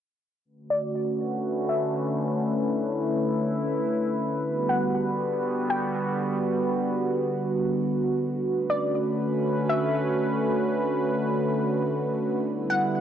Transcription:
0.45 D3 A3 C#4 F#4 B4
0.70 D5
1.69 E5
2.45 E4
4.44 D3 G3 B3 F#4
4.69 F#5
5.70 G5
8.45 A3 C#4 B4
8.70 D5
9.69 E5
12.45 G3 B3 E4 B4
12.70 F#5

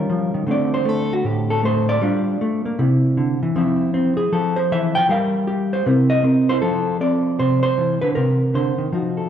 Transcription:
Already playing: G3 C#4 F4 A#4
0.10 F3
0.34 D#3
0.47 D3 A3 C4
0.51 D5
0.74 C5
0.85 A3 A4
1.13 F#4
1.24 A2 G4
1.50 A4
1.63 A3 C5
1.89 D5
2.02 G3 D4 F4
2.41 A3
2.65 A#3
2.79 C3 E4
3.17 D3
3.43 E3
3.56 F3 C4 E4 E5
3.94 C4
4.17 G#4
4.32 F3 A4
4.56 C5
4.72 E3 E5
4.95 F3 G5
5.09 G3 G4 A#4 F5
5.47 G4
5.73 C5
5.86 C3 C4 E4 A#4
6.10 D#5
6.24 C4 A#4
6.49 E4 C5
6.62 F3 A4
7.01 C4 D5
7.39 C3 C5
7.63 C5
7.78 E3
8.01 D3 B4
8.15 C3 A#4
8.54 D3 C5
8.78 D#3
8.92 F3 D#4 F#4
9.17 A4

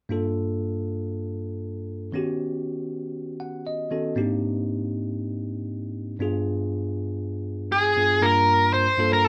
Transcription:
0.09 G2 A#3 D4 F4 A4
2.12 D#3 B3 C#4 F#4 G4
3.40 F#5
3.67 D#5
3.91 D#3 B3 C#4 F#4 A4
4.15 G#2 A#3 C4 D4 D#4 G4
6.19 G2 B3 D4 F4 G#4
7.72 G#4
7.96 G2 B3 D4 F4 G#4
8.21 G2 A#3 D4 F4 A#4
8.73 C5
8.98 G2 A#3 D4 F4 A4
9.13 A#4
9.25 A4

